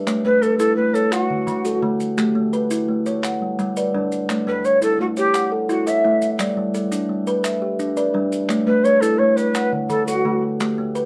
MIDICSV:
0, 0, Header, 1, 5, 480
1, 0, Start_track
1, 0, Tempo, 350672
1, 103, Time_signature, 12, 3, 24, 8
1, 15131, End_track
2, 0, Start_track
2, 0, Title_t, "Native American-style wooden flute"
2, 0, Program_c, 0, 77
2, 338, Note_on_c, 0, 71, 97
2, 571, Note_on_c, 0, 69, 88
2, 591, Note_off_c, 0, 71, 0
2, 785, Note_off_c, 0, 69, 0
2, 793, Note_on_c, 0, 69, 98
2, 1030, Note_off_c, 0, 69, 0
2, 1040, Note_on_c, 0, 71, 98
2, 1284, Note_on_c, 0, 69, 91
2, 1305, Note_off_c, 0, 71, 0
2, 1530, Note_on_c, 0, 66, 84
2, 1550, Note_off_c, 0, 69, 0
2, 2498, Note_off_c, 0, 66, 0
2, 6130, Note_on_c, 0, 71, 100
2, 6362, Note_on_c, 0, 73, 90
2, 6383, Note_off_c, 0, 71, 0
2, 6590, Note_off_c, 0, 73, 0
2, 6598, Note_on_c, 0, 69, 99
2, 6816, Note_off_c, 0, 69, 0
2, 6845, Note_on_c, 0, 66, 87
2, 6927, Note_off_c, 0, 66, 0
2, 7088, Note_on_c, 0, 67, 95
2, 7525, Note_off_c, 0, 67, 0
2, 7800, Note_on_c, 0, 66, 86
2, 8038, Note_on_c, 0, 76, 77
2, 8059, Note_off_c, 0, 66, 0
2, 8573, Note_off_c, 0, 76, 0
2, 11862, Note_on_c, 0, 71, 95
2, 12098, Note_on_c, 0, 73, 94
2, 12119, Note_off_c, 0, 71, 0
2, 12324, Note_on_c, 0, 69, 99
2, 12344, Note_off_c, 0, 73, 0
2, 12568, Note_on_c, 0, 73, 93
2, 12588, Note_off_c, 0, 69, 0
2, 12812, Note_on_c, 0, 71, 98
2, 12833, Note_off_c, 0, 73, 0
2, 13299, Note_off_c, 0, 71, 0
2, 13539, Note_on_c, 0, 69, 89
2, 13761, Note_off_c, 0, 69, 0
2, 13769, Note_on_c, 0, 66, 83
2, 14279, Note_off_c, 0, 66, 0
2, 15131, End_track
3, 0, Start_track
3, 0, Title_t, "Kalimba"
3, 0, Program_c, 1, 108
3, 98, Note_on_c, 1, 57, 79
3, 575, Note_on_c, 1, 71, 73
3, 581, Note_off_c, 1, 57, 0
3, 818, Note_on_c, 1, 64, 80
3, 1291, Note_on_c, 1, 73, 78
3, 1300, Note_off_c, 1, 71, 0
3, 1301, Note_off_c, 1, 64, 0
3, 1538, Note_off_c, 1, 73, 0
3, 2014, Note_on_c, 1, 50, 86
3, 2257, Note_on_c, 1, 66, 77
3, 2482, Note_off_c, 1, 50, 0
3, 2499, Note_on_c, 1, 50, 73
3, 2981, Note_on_c, 1, 57, 87
3, 2982, Note_off_c, 1, 50, 0
3, 2982, Note_off_c, 1, 66, 0
3, 3463, Note_off_c, 1, 57, 0
3, 3463, Note_on_c, 1, 71, 70
3, 3706, Note_on_c, 1, 64, 79
3, 4185, Note_off_c, 1, 71, 0
3, 4186, Note_off_c, 1, 64, 0
3, 4193, Note_on_c, 1, 73, 82
3, 4430, Note_off_c, 1, 73, 0
3, 4912, Note_on_c, 1, 55, 84
3, 5161, Note_on_c, 1, 71, 70
3, 5384, Note_off_c, 1, 55, 0
3, 5400, Note_on_c, 1, 55, 77
3, 5874, Note_off_c, 1, 55, 0
3, 5874, Note_off_c, 1, 71, 0
3, 5877, Note_on_c, 1, 57, 76
3, 6352, Note_off_c, 1, 57, 0
3, 6595, Note_on_c, 1, 64, 78
3, 7071, Note_off_c, 1, 64, 0
3, 7079, Note_on_c, 1, 73, 76
3, 7553, Note_off_c, 1, 73, 0
3, 7791, Note_on_c, 1, 64, 85
3, 8031, Note_on_c, 1, 73, 71
3, 8270, Note_off_c, 1, 64, 0
3, 8274, Note_on_c, 1, 57, 70
3, 8750, Note_off_c, 1, 73, 0
3, 8750, Note_on_c, 1, 55, 82
3, 8751, Note_off_c, 1, 57, 0
3, 9229, Note_off_c, 1, 55, 0
3, 9232, Note_on_c, 1, 69, 70
3, 9466, Note_on_c, 1, 62, 82
3, 9947, Note_off_c, 1, 62, 0
3, 9950, Note_off_c, 1, 69, 0
3, 9954, Note_on_c, 1, 71, 85
3, 10431, Note_off_c, 1, 71, 0
3, 10670, Note_on_c, 1, 62, 83
3, 10909, Note_on_c, 1, 71, 72
3, 11148, Note_on_c, 1, 55, 78
3, 11149, Note_off_c, 1, 62, 0
3, 11623, Note_on_c, 1, 57, 85
3, 11628, Note_off_c, 1, 55, 0
3, 11628, Note_off_c, 1, 71, 0
3, 12105, Note_off_c, 1, 57, 0
3, 12107, Note_on_c, 1, 71, 64
3, 12348, Note_on_c, 1, 64, 87
3, 12827, Note_off_c, 1, 64, 0
3, 12827, Note_off_c, 1, 71, 0
3, 12827, Note_on_c, 1, 73, 82
3, 13067, Note_off_c, 1, 73, 0
3, 13548, Note_on_c, 1, 50, 81
3, 13793, Note_on_c, 1, 66, 70
3, 14016, Note_off_c, 1, 50, 0
3, 14033, Note_on_c, 1, 50, 74
3, 14509, Note_off_c, 1, 50, 0
3, 14509, Note_off_c, 1, 66, 0
3, 14517, Note_on_c, 1, 57, 86
3, 14991, Note_off_c, 1, 57, 0
3, 14992, Note_on_c, 1, 71, 72
3, 15131, Note_off_c, 1, 71, 0
3, 15131, End_track
4, 0, Start_track
4, 0, Title_t, "Kalimba"
4, 0, Program_c, 2, 108
4, 103, Note_on_c, 2, 73, 66
4, 343, Note_on_c, 2, 57, 89
4, 583, Note_off_c, 2, 73, 0
4, 823, Note_off_c, 2, 57, 0
4, 1063, Note_on_c, 2, 57, 74
4, 1544, Note_off_c, 2, 57, 0
4, 1544, Note_on_c, 2, 78, 70
4, 1787, Note_on_c, 2, 50, 75
4, 2024, Note_off_c, 2, 78, 0
4, 2266, Note_off_c, 2, 50, 0
4, 2269, Note_on_c, 2, 69, 65
4, 2503, Note_on_c, 2, 57, 87
4, 2980, Note_on_c, 2, 67, 70
4, 2984, Note_off_c, 2, 57, 0
4, 2988, Note_off_c, 2, 69, 0
4, 3221, Note_on_c, 2, 57, 89
4, 3463, Note_off_c, 2, 67, 0
4, 3704, Note_off_c, 2, 57, 0
4, 3947, Note_on_c, 2, 57, 80
4, 4427, Note_off_c, 2, 57, 0
4, 4431, Note_on_c, 2, 78, 60
4, 4677, Note_on_c, 2, 55, 77
4, 4909, Note_off_c, 2, 78, 0
4, 5152, Note_off_c, 2, 55, 0
4, 5164, Note_on_c, 2, 74, 60
4, 5400, Note_on_c, 2, 62, 77
4, 5874, Note_off_c, 2, 62, 0
4, 5876, Note_off_c, 2, 74, 0
4, 5876, Note_on_c, 2, 73, 66
4, 6117, Note_on_c, 2, 57, 91
4, 6352, Note_off_c, 2, 73, 0
4, 6592, Note_off_c, 2, 57, 0
4, 6831, Note_on_c, 2, 57, 81
4, 7309, Note_off_c, 2, 57, 0
4, 7316, Note_on_c, 2, 78, 64
4, 7553, Note_on_c, 2, 69, 78
4, 8030, Note_off_c, 2, 69, 0
4, 8032, Note_off_c, 2, 78, 0
4, 8034, Note_on_c, 2, 76, 68
4, 8282, Note_on_c, 2, 64, 86
4, 8751, Note_off_c, 2, 76, 0
4, 8755, Note_off_c, 2, 64, 0
4, 8759, Note_on_c, 2, 74, 61
4, 8994, Note_on_c, 2, 55, 85
4, 9234, Note_off_c, 2, 74, 0
4, 9471, Note_off_c, 2, 55, 0
4, 9708, Note_on_c, 2, 55, 75
4, 10188, Note_off_c, 2, 55, 0
4, 10188, Note_on_c, 2, 76, 68
4, 10428, Note_on_c, 2, 67, 76
4, 10907, Note_on_c, 2, 74, 66
4, 10908, Note_off_c, 2, 67, 0
4, 10908, Note_off_c, 2, 76, 0
4, 11140, Note_on_c, 2, 62, 84
4, 11618, Note_on_c, 2, 73, 66
4, 11624, Note_off_c, 2, 62, 0
4, 11627, Note_off_c, 2, 74, 0
4, 11866, Note_on_c, 2, 57, 85
4, 12102, Note_off_c, 2, 73, 0
4, 12347, Note_off_c, 2, 57, 0
4, 12591, Note_on_c, 2, 57, 76
4, 13069, Note_off_c, 2, 57, 0
4, 13069, Note_on_c, 2, 78, 66
4, 13312, Note_on_c, 2, 50, 78
4, 13548, Note_off_c, 2, 78, 0
4, 13789, Note_off_c, 2, 50, 0
4, 13793, Note_on_c, 2, 69, 70
4, 14032, Note_on_c, 2, 57, 80
4, 14509, Note_off_c, 2, 57, 0
4, 14509, Note_off_c, 2, 69, 0
4, 14517, Note_on_c, 2, 67, 67
4, 14757, Note_on_c, 2, 57, 86
4, 14991, Note_off_c, 2, 67, 0
4, 15131, Note_off_c, 2, 57, 0
4, 15131, End_track
5, 0, Start_track
5, 0, Title_t, "Drums"
5, 103, Note_on_c, 9, 39, 66
5, 104, Note_on_c, 9, 70, 72
5, 240, Note_off_c, 9, 39, 0
5, 240, Note_off_c, 9, 70, 0
5, 585, Note_on_c, 9, 70, 56
5, 722, Note_off_c, 9, 70, 0
5, 817, Note_on_c, 9, 70, 83
5, 954, Note_off_c, 9, 70, 0
5, 1305, Note_on_c, 9, 70, 58
5, 1442, Note_off_c, 9, 70, 0
5, 1539, Note_on_c, 9, 70, 68
5, 1541, Note_on_c, 9, 39, 61
5, 1676, Note_off_c, 9, 70, 0
5, 1678, Note_off_c, 9, 39, 0
5, 2023, Note_on_c, 9, 70, 51
5, 2160, Note_off_c, 9, 70, 0
5, 2261, Note_on_c, 9, 70, 68
5, 2397, Note_off_c, 9, 70, 0
5, 2739, Note_on_c, 9, 70, 62
5, 2876, Note_off_c, 9, 70, 0
5, 2981, Note_on_c, 9, 70, 64
5, 2991, Note_on_c, 9, 39, 56
5, 3118, Note_off_c, 9, 70, 0
5, 3128, Note_off_c, 9, 39, 0
5, 3465, Note_on_c, 9, 70, 54
5, 3602, Note_off_c, 9, 70, 0
5, 3702, Note_on_c, 9, 70, 76
5, 3839, Note_off_c, 9, 70, 0
5, 4187, Note_on_c, 9, 70, 57
5, 4324, Note_off_c, 9, 70, 0
5, 4430, Note_on_c, 9, 39, 60
5, 4435, Note_on_c, 9, 70, 66
5, 4567, Note_off_c, 9, 39, 0
5, 4572, Note_off_c, 9, 70, 0
5, 4915, Note_on_c, 9, 70, 47
5, 5052, Note_off_c, 9, 70, 0
5, 5155, Note_on_c, 9, 70, 68
5, 5292, Note_off_c, 9, 70, 0
5, 5636, Note_on_c, 9, 70, 59
5, 5773, Note_off_c, 9, 70, 0
5, 5877, Note_on_c, 9, 39, 57
5, 5878, Note_on_c, 9, 70, 60
5, 6014, Note_off_c, 9, 39, 0
5, 6015, Note_off_c, 9, 70, 0
5, 6360, Note_on_c, 9, 70, 51
5, 6496, Note_off_c, 9, 70, 0
5, 6596, Note_on_c, 9, 70, 69
5, 6733, Note_off_c, 9, 70, 0
5, 7071, Note_on_c, 9, 70, 59
5, 7208, Note_off_c, 9, 70, 0
5, 7309, Note_on_c, 9, 70, 72
5, 7316, Note_on_c, 9, 39, 62
5, 7445, Note_off_c, 9, 70, 0
5, 7453, Note_off_c, 9, 39, 0
5, 7793, Note_on_c, 9, 70, 53
5, 7930, Note_off_c, 9, 70, 0
5, 8035, Note_on_c, 9, 70, 70
5, 8172, Note_off_c, 9, 70, 0
5, 8509, Note_on_c, 9, 70, 70
5, 8646, Note_off_c, 9, 70, 0
5, 8750, Note_on_c, 9, 70, 74
5, 8753, Note_on_c, 9, 39, 63
5, 8887, Note_off_c, 9, 70, 0
5, 8890, Note_off_c, 9, 39, 0
5, 9229, Note_on_c, 9, 70, 61
5, 9366, Note_off_c, 9, 70, 0
5, 9472, Note_on_c, 9, 70, 85
5, 9608, Note_off_c, 9, 70, 0
5, 9948, Note_on_c, 9, 70, 55
5, 10085, Note_off_c, 9, 70, 0
5, 10185, Note_on_c, 9, 70, 82
5, 10190, Note_on_c, 9, 39, 58
5, 10322, Note_off_c, 9, 70, 0
5, 10327, Note_off_c, 9, 39, 0
5, 10669, Note_on_c, 9, 70, 57
5, 10806, Note_off_c, 9, 70, 0
5, 10906, Note_on_c, 9, 70, 68
5, 11043, Note_off_c, 9, 70, 0
5, 11390, Note_on_c, 9, 70, 62
5, 11526, Note_off_c, 9, 70, 0
5, 11622, Note_on_c, 9, 39, 50
5, 11635, Note_on_c, 9, 70, 68
5, 11759, Note_off_c, 9, 39, 0
5, 11772, Note_off_c, 9, 70, 0
5, 12113, Note_on_c, 9, 70, 54
5, 12250, Note_off_c, 9, 70, 0
5, 12353, Note_on_c, 9, 70, 83
5, 12490, Note_off_c, 9, 70, 0
5, 12833, Note_on_c, 9, 70, 58
5, 12970, Note_off_c, 9, 70, 0
5, 13068, Note_on_c, 9, 70, 76
5, 13077, Note_on_c, 9, 39, 62
5, 13204, Note_off_c, 9, 70, 0
5, 13213, Note_off_c, 9, 39, 0
5, 13549, Note_on_c, 9, 70, 53
5, 13686, Note_off_c, 9, 70, 0
5, 13793, Note_on_c, 9, 70, 72
5, 13930, Note_off_c, 9, 70, 0
5, 14510, Note_on_c, 9, 70, 69
5, 14522, Note_on_c, 9, 39, 73
5, 14647, Note_off_c, 9, 70, 0
5, 14659, Note_off_c, 9, 39, 0
5, 14992, Note_on_c, 9, 70, 52
5, 15129, Note_off_c, 9, 70, 0
5, 15131, End_track
0, 0, End_of_file